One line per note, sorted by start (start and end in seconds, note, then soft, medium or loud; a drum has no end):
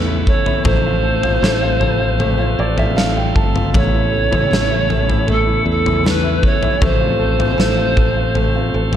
0.00 0.24 E2 medium
0.00 0.27 A2 medium
0.00 0.63 C#3 medium
0.00 0.24 E3 medium
0.00 0.27 A3 medium
0.00 6.77 A3 medium
0.00 0.26 B3 medium
0.00 0.63 B3 medium
0.00 0.27 C#4 medium
0.00 0.07 E4 medium
0.00 0.28 E4 medium
0.07 0.45 E4 soft
0.26 0.46 E3 medium
0.26 0.65 A3 medium
0.26 0.47 B3 medium
0.26 0.45 C#4 medium
0.26 0.43 E4 medium
0.26 0.66 C#5 medium
0.26 kick medium
0.45 0.64 B3 soft
0.45 0.65 C#4 soft
0.45 0.65 E4 medium
0.45 floor tom medium
0.64 1.39 A1 medium
0.64 1.23 A2 medium
0.64 1.23 F3 medium
0.64 3.70 F3 medium
0.64 1.23 A3 medium
0.64 2.18 A3 medium
0.64 3.70 C4 medium
0.64 1.23 C4 medium
0.64 1.21 F4 medium
0.64 2.96 C5 loud
0.64 kick loud
0.64 floor tom loud
0.86 1.23 F4 medium
1.04 1.42 A4 medium
1.22 1.41 A3 soft
1.22 1.42 C4 soft
1.22 1.42 F4 medium
1.22 1.61 F4 medium
1.22 floor tom medium
1.41 2.54 A1 loud
1.41 1.61 A2 medium
1.41 1.62 F3 medium
1.41 1.62 A3 medium
1.41 1.61 C4 medium
1.41 1.59 F4 medium
1.41 1.79 A4 medium
1.41 snare loud
1.61 1.79 A3 soft
1.61 1.81 C4 medium
1.61 1.81 F4 medium
1.61 1.98 F4 medium
1.80 2.17 F3 medium
1.80 2.18 A3 medium
1.80 2.20 C4 medium
1.80 2.20 F4 medium
1.80 2.58 A4 medium
1.80 floor tom medium
2.00 2.37 F4 medium
2.18 2.38 F3 medium
2.18 3.69 A3 medium
2.18 2.39 A3 medium
2.18 2.38 C4 medium
2.18 2.36 F4 medium
2.18 floor tom medium
2.37 2.95 A3 soft
2.37 2.96 C4 medium
2.37 2.96 F4 medium
2.37 2.76 F4 soft
2.59 3.32 A1 medium
2.59 2.95 A4 medium
2.59 2.77 D5 medium
2.78 3.15 F4 medium
2.78 2.96 E5 medium
2.78 floor tom medium
2.96 3.16 A2 medium
2.96 3.16 F3 medium
2.96 3.16 A3 loud
2.96 3.16 C4 medium
2.96 3.14 F4 medium
2.96 3.34 A4 medium
2.96 3.15 F5 medium
2.96 snare loud
3.15 3.35 A3 medium
3.15 3.36 C4 medium
3.15 3.35 F4 medium
3.15 3.54 F4 soft
3.15 3.35 G5 medium
3.35 3.71 G1 medium
3.35 3.54 F3 medium
3.35 3.55 A3 medium
3.35 3.54 C4 medium
3.35 3.52 F4 medium
3.35 3.73 A4 medium
3.35 3.72 A5 medium
3.35 kick medium
3.53 3.74 A3 soft
3.53 3.74 C4 soft
3.53 3.73 F4 medium
3.53 3.74 F4 medium
3.53 floor tom medium
3.73 4.28 A1 medium
3.73 4.31 A2 medium
3.73 6.79 C#3 medium
3.73 4.31 E3 medium
3.73 4.10 A3 medium
3.73 4.32 B3 medium
3.73 6.79 B3 medium
3.73 4.31 C#4 medium
3.73 4.29 E4 medium
3.73 5.32 C#5 loud
3.73 kick medium
3.73 floor tom loud
3.93 4.29 E4 medium
4.12 4.48 A3 medium
4.30 4.50 A1 medium
4.30 4.50 B3 soft
4.30 4.51 C#4 soft
4.30 4.50 E4 medium
4.30 4.67 E4 medium
4.30 floor tom medium
4.50 5.62 A1 loud
4.50 4.70 A2 medium
4.50 4.70 E3 medium
4.50 4.87 A3 medium
4.50 4.70 B3 medium
4.50 4.70 C#4 medium
4.50 4.68 E4 medium
4.50 snare medium
4.69 4.88 B3 soft
4.69 4.89 C#4 medium
4.69 5.07 E4 medium
4.69 4.89 E4 medium
4.88 5.25 E3 medium
4.88 5.26 A3 medium
4.88 5.27 B3 medium
4.88 5.27 C#4 medium
4.88 5.28 E4 medium
4.88 floor tom medium
5.08 5.45 E4 medium
5.08 floor tom medium
5.27 5.46 E3 medium
5.27 5.64 A3 medium
5.27 5.47 B3 medium
5.27 5.46 C#4 medium
5.27 5.44 E4 medium
5.27 5.68 A4 medium
5.27 floor tom medium
5.45 6.04 B3 soft
5.45 6.04 C#4 soft
5.45 6.04 E4 soft
5.45 5.84 E4 medium
5.65 6.39 E2 medium
5.65 6.03 A3 medium
5.70 6.04 A4 medium
5.86 6.22 E4 soft
5.86 floor tom medium
6.03 6.23 A2 medium
6.03 6.24 E3 medium
6.03 6.42 A3 medium
6.03 6.24 B3 medium
6.03 6.23 C#4 medium
6.03 6.22 E4 medium
6.03 6.47 B4 medium
6.03 snare loud
6.23 6.42 B3 soft
6.23 6.43 C#4 soft
6.23 6.43 E4 soft
6.23 6.60 E4 medium
6.42 6.62 E3 medium
6.42 6.80 A3 medium
6.42 6.62 B3 medium
6.42 6.61 C#4 medium
6.42 6.60 E4 medium
6.42 6.85 C#5 loud
6.42 kick medium
6.61 6.81 B3 soft
6.61 6.82 C#4 medium
6.61 6.81 E4 medium
6.61 floor tom medium
6.80 7.55 A1 medium
6.80 7.39 A2 medium
6.80 7.39 F3 medium
6.80 8.96 F3 medium
6.80 8.35 A3 medium
6.80 8.96 A3 medium
6.80 7.39 A3 medium
6.80 8.96 C4 medium
6.80 7.39 C4 medium
6.80 7.37 F4 medium
6.80 8.96 C5 loud
6.80 kick loud
6.80 floor tom loud
7.00 7.37 F4 medium
7.19 7.56 A4 medium
7.38 7.57 A3 soft
7.38 7.58 C4 soft
7.38 7.58 F4 medium
7.38 7.76 F4 soft
7.38 floor tom medium
7.57 8.70 A1 loud
7.57 7.77 A2 medium
7.57 7.77 F3 medium
7.57 7.78 A3 medium
7.57 7.77 C4 medium
7.57 7.75 F4 medium
7.57 7.95 A4 medium
7.57 snare loud
7.76 7.95 A3 soft
7.76 7.96 C4 medium
7.76 7.96 F4 medium
7.76 8.15 F4 soft
7.95 8.33 F3 medium
7.95 8.34 A3 medium
7.95 8.35 C4 medium
7.95 8.36 F4 medium
7.95 8.73 A4 medium
7.95 kick medium
7.95 floor tom medium
8.17 8.54 F4 soft
8.34 8.54 F3 medium
8.34 8.54 A3 medium
8.34 8.96 A3 medium
8.34 8.54 C4 medium
8.34 8.52 F4 medium
8.34 floor tom medium
8.53 8.96 A3 soft
8.53 8.96 C4 soft
8.53 8.96 F4 medium
8.53 8.93 F4 soft
8.74 8.96 A1 medium
8.74 8.96 A4 soft
8.93 floor tom medium